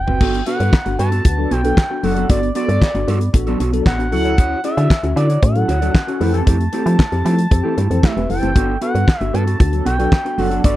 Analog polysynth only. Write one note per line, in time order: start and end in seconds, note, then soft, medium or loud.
1.38 1.49 F#3 medium
1.38 1.49 D4 medium
1.38 1.49 A4 loud
1.65 1.76 F#3 medium
1.65 1.76 D4 medium
1.65 1.76 A4 medium
2.03 2.26 F#3 medium
2.03 2.26 D4 loud
2.03 2.26 A4 loud
3.47 3.58 F#3 medium
3.47 3.58 D4 medium
3.47 3.58 A4 loud
3.73 3.84 F#3 medium
3.73 3.84 D4 medium
3.73 3.84 A4 medium
4.12 4.34 F#3 loud
4.12 4.34 E4 loud
4.12 4.34 A4 loud
5.55 5.67 F#3 medium
5.55 5.67 E4 medium
5.55 5.67 A4 loud
5.82 5.93 F#3 medium
5.82 5.93 E4 medium
5.82 5.93 A4 medium
6.21 6.43 E3 medium
6.21 6.43 C4 medium
6.21 6.43 A4 loud
7.64 7.75 E3 medium
7.64 7.75 C4 medium
7.64 7.75 A4 medium
7.90 8.01 E3 medium
7.90 8.01 C4 medium
7.90 8.01 A4 loud
8.29 8.52 E3 medium
8.29 8.52 C4 medium
8.29 8.52 A4 loud
9.73 9.84 F#3 medium
9.73 9.84 D4 medium
9.73 9.84 A4 loud
9.99 10.10 F#3 medium
9.99 10.10 D4 medium
9.99 10.10 A4 loud
10.38 10.60 F#3 loud
10.38 10.60 D4 loud
10.38 10.60 A4 loud